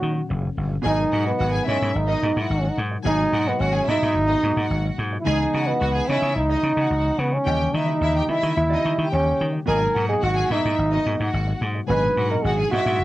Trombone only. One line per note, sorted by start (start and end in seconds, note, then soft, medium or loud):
0.00 0.26 F#4 loud
0.87 1.24 D#4 loud
1.27 1.65 B3 medium
1.67 1.97 C#4 medium
1.95 2.43 D#4 medium
2.41 2.53 E4 medium
2.52 2.61 D#4 medium
2.60 2.72 C#4 medium
2.70 2.78 D#4 medium
3.07 3.49 D#4 loud
3.48 3.62 B3 loud
3.60 3.90 C#4 loud
3.89 4.98 D#4 loud
5.20 5.29 E4 medium
5.28 5.69 D#4 loud
5.67 6.10 B3 medium
6.08 6.36 C#4 medium
6.36 7.21 D#4 loud
7.19 7.35 B3 medium
7.33 7.77 C#4 loud
7.75 8.31 D#4 medium
8.30 8.57 E4 loud
8.57 9.08 E4 loud
9.12 9.51 C#4 loud
9.68 10.06 A#4 loud
10.09 10.25 G#4 loud
10.24 10.53 F#4 loud
10.52 11.34 D#4 loud
11.89 12.31 B4 loud
12.30 12.45 A#4 loud
12.43 12.70 G#4 loud
12.71 13.04 F#4 loud